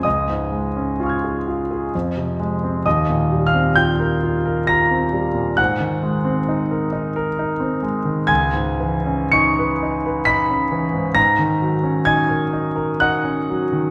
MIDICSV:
0, 0, Header, 1, 2, 480
1, 0, Start_track
1, 0, Tempo, 943396
1, 27, Time_signature, 3, 2, 24, 8
1, 986, Tempo, 918836
1, 2426, Tempo, 899550
1, 4346, Tempo, 1039861
1, 4826, Tempo, 940439
1, 5306, Tempo, 899550
1, 6266, Tempo, 938967
1, 7204, End_track
2, 0, Start_track
2, 0, Title_t, "Grand piano"
2, 0, Program_c, 0, 0
2, 0, Control_c, 0, 64, 127
2, 16, Note_on_c, 0, 87, 65
2, 22, Note_on_c, 0, 37, 47
2, 23, Note_on_c, 0, 75, 45
2, 34, Control_c, 0, 64, 0
2, 131, Control_c, 0, 64, 127
2, 143, Note_on_c, 0, 44, 34
2, 263, Note_on_c, 0, 56, 38
2, 340, Note_off_c, 0, 44, 0
2, 389, Note_on_c, 0, 61, 36
2, 460, Note_off_c, 0, 56, 0
2, 508, Note_on_c, 0, 65, 41
2, 510, Note_on_c, 0, 80, 32
2, 524, Note_on_c, 0, 85, 30
2, 541, Note_on_c, 0, 89, 30
2, 557, Note_on_c, 0, 92, 31
2, 582, Note_off_c, 0, 61, 0
2, 633, Note_on_c, 0, 68, 37
2, 701, Note_off_c, 0, 65, 0
2, 752, Note_on_c, 0, 65, 38
2, 822, Note_off_c, 0, 68, 0
2, 870, Note_on_c, 0, 68, 43
2, 941, Note_off_c, 0, 65, 0
2, 964, Note_off_c, 0, 37, 0
2, 966, Note_off_c, 0, 80, 0
2, 973, Note_off_c, 0, 85, 0
2, 981, Note_off_c, 0, 89, 0
2, 987, Note_off_c, 0, 68, 0
2, 989, Note_off_c, 0, 92, 0
2, 992, Note_on_c, 0, 41, 47
2, 994, Control_c, 0, 64, 0
2, 1068, Control_c, 0, 64, 127
2, 1106, Note_on_c, 0, 48, 34
2, 1204, Note_off_c, 0, 75, 0
2, 1221, Note_off_c, 0, 87, 0
2, 1225, Note_on_c, 0, 56, 42
2, 1297, Note_off_c, 0, 48, 0
2, 1350, Note_on_c, 0, 60, 39
2, 1417, Note_off_c, 0, 56, 0
2, 1453, Note_off_c, 0, 41, 0
2, 1466, Note_on_c, 0, 87, 65
2, 1468, Note_off_c, 0, 60, 0
2, 1468, Note_on_c, 0, 39, 50
2, 1468, Note_on_c, 0, 75, 51
2, 1473, Control_c, 0, 64, 0
2, 1556, Control_c, 0, 64, 127
2, 1589, Note_on_c, 0, 46, 38
2, 1707, Note_on_c, 0, 55, 39
2, 1765, Note_off_c, 0, 75, 0
2, 1779, Note_off_c, 0, 46, 0
2, 1784, Note_on_c, 0, 89, 71
2, 1785, Note_off_c, 0, 87, 0
2, 1790, Note_on_c, 0, 77, 53
2, 1824, Note_on_c, 0, 60, 40
2, 1898, Note_off_c, 0, 55, 0
2, 1935, Note_on_c, 0, 91, 82
2, 1938, Note_off_c, 0, 77, 0
2, 1941, Note_on_c, 0, 79, 56
2, 1943, Note_on_c, 0, 65, 42
2, 1945, Note_off_c, 0, 89, 0
2, 2018, Note_off_c, 0, 60, 0
2, 2062, Note_on_c, 0, 70, 40
2, 2138, Note_off_c, 0, 65, 0
2, 2184, Note_on_c, 0, 65, 42
2, 2257, Note_off_c, 0, 70, 0
2, 2302, Note_on_c, 0, 70, 45
2, 2377, Note_off_c, 0, 65, 0
2, 2403, Note_off_c, 0, 79, 0
2, 2415, Note_on_c, 0, 94, 80
2, 2420, Note_on_c, 0, 65, 44
2, 2421, Note_off_c, 0, 91, 0
2, 2423, Note_on_c, 0, 82, 63
2, 2494, Note_off_c, 0, 70, 0
2, 2538, Note_on_c, 0, 60, 36
2, 2614, Note_off_c, 0, 65, 0
2, 2655, Note_on_c, 0, 55, 41
2, 2732, Note_off_c, 0, 60, 0
2, 2774, Note_on_c, 0, 46, 38
2, 2850, Note_off_c, 0, 55, 0
2, 2880, Note_off_c, 0, 82, 0
2, 2883, Note_off_c, 0, 39, 0
2, 2892, Note_on_c, 0, 90, 74
2, 2897, Note_off_c, 0, 94, 0
2, 2897, Note_on_c, 0, 44, 57
2, 2897, Note_on_c, 0, 78, 58
2, 2898, Note_off_c, 0, 46, 0
2, 2910, Control_c, 0, 64, 0
2, 2980, Control_c, 0, 64, 127
2, 3017, Note_on_c, 0, 51, 44
2, 3136, Note_on_c, 0, 56, 42
2, 3216, Note_off_c, 0, 51, 0
2, 3254, Note_on_c, 0, 60, 45
2, 3335, Note_off_c, 0, 56, 0
2, 3382, Note_on_c, 0, 63, 44
2, 3453, Note_off_c, 0, 60, 0
2, 3502, Note_on_c, 0, 70, 42
2, 3575, Note_off_c, 0, 63, 0
2, 3616, Note_on_c, 0, 63, 49
2, 3693, Note_off_c, 0, 70, 0
2, 3742, Note_on_c, 0, 70, 54
2, 3810, Note_off_c, 0, 63, 0
2, 3865, Note_on_c, 0, 63, 44
2, 3933, Note_off_c, 0, 70, 0
2, 3976, Note_on_c, 0, 60, 42
2, 4054, Note_off_c, 0, 63, 0
2, 4077, Note_off_c, 0, 78, 0
2, 4096, Note_off_c, 0, 90, 0
2, 4096, Note_on_c, 0, 56, 45
2, 4171, Note_off_c, 0, 60, 0
2, 4217, Note_on_c, 0, 51, 41
2, 4294, Note_off_c, 0, 56, 0
2, 4322, Note_off_c, 0, 44, 0
2, 4334, Note_on_c, 0, 92, 86
2, 4338, Note_on_c, 0, 37, 57
2, 4338, Note_on_c, 0, 80, 65
2, 4344, Note_off_c, 0, 51, 0
2, 4355, Control_c, 0, 64, 0
2, 4431, Control_c, 0, 64, 127
2, 4457, Note_on_c, 0, 44, 45
2, 4580, Note_on_c, 0, 52, 47
2, 4655, Note_off_c, 0, 44, 0
2, 4701, Note_on_c, 0, 61, 47
2, 4778, Note_off_c, 0, 52, 0
2, 4804, Note_off_c, 0, 80, 0
2, 4818, Note_on_c, 0, 97, 88
2, 4821, Note_off_c, 0, 92, 0
2, 4824, Note_on_c, 0, 85, 69
2, 4825, Note_on_c, 0, 63, 52
2, 4901, Note_off_c, 0, 61, 0
2, 4957, Note_on_c, 0, 71, 45
2, 5026, Note_off_c, 0, 63, 0
2, 5079, Note_on_c, 0, 63, 46
2, 5146, Note_off_c, 0, 71, 0
2, 5196, Note_on_c, 0, 71, 51
2, 5262, Note_off_c, 0, 63, 0
2, 5284, Note_off_c, 0, 85, 0
2, 5296, Note_on_c, 0, 95, 92
2, 5301, Note_off_c, 0, 97, 0
2, 5302, Note_on_c, 0, 63, 50
2, 5305, Note_on_c, 0, 83, 73
2, 5379, Note_off_c, 0, 71, 0
2, 5429, Note_on_c, 0, 61, 44
2, 5493, Note_off_c, 0, 63, 0
2, 5545, Note_on_c, 0, 52, 48
2, 5615, Note_off_c, 0, 61, 0
2, 5658, Note_on_c, 0, 44, 40
2, 5732, Note_off_c, 0, 52, 0
2, 5752, Note_off_c, 0, 37, 0
2, 5757, Note_off_c, 0, 83, 0
2, 5764, Note_off_c, 0, 44, 0
2, 5772, Note_on_c, 0, 44, 55
2, 5772, Note_on_c, 0, 94, 93
2, 5773, Note_off_c, 0, 95, 0
2, 5775, Note_on_c, 0, 82, 67
2, 5788, Control_c, 0, 64, 0
2, 5872, Control_c, 0, 64, 127
2, 5901, Note_on_c, 0, 51, 47
2, 6021, Note_on_c, 0, 54, 48
2, 6096, Note_off_c, 0, 51, 0
2, 6139, Note_on_c, 0, 61, 44
2, 6218, Note_off_c, 0, 54, 0
2, 6243, Note_off_c, 0, 82, 0
2, 6255, Note_on_c, 0, 92, 93
2, 6262, Note_on_c, 0, 63, 52
2, 6263, Note_off_c, 0, 94, 0
2, 6263, Note_on_c, 0, 80, 67
2, 6335, Note_off_c, 0, 61, 0
2, 6378, Note_on_c, 0, 70, 46
2, 6452, Note_off_c, 0, 63, 0
2, 6501, Note_on_c, 0, 63, 47
2, 6569, Note_off_c, 0, 70, 0
2, 6615, Note_on_c, 0, 70, 49
2, 6691, Note_off_c, 0, 63, 0
2, 6718, Note_off_c, 0, 80, 0
2, 6735, Note_off_c, 0, 92, 0
2, 6741, Note_on_c, 0, 90, 87
2, 6746, Note_on_c, 0, 78, 64
2, 6747, Note_on_c, 0, 63, 52
2, 6811, Note_off_c, 0, 70, 0
2, 6865, Note_on_c, 0, 61, 39
2, 6939, Note_off_c, 0, 63, 0
2, 6994, Note_on_c, 0, 54, 48
2, 7059, Note_off_c, 0, 61, 0
2, 7111, Note_on_c, 0, 51, 41
2, 7184, Note_off_c, 0, 54, 0
2, 7204, Note_off_c, 0, 44, 0
2, 7204, Note_off_c, 0, 51, 0
2, 7204, Note_off_c, 0, 78, 0
2, 7204, Note_off_c, 0, 90, 0
2, 7204, End_track
0, 0, End_of_file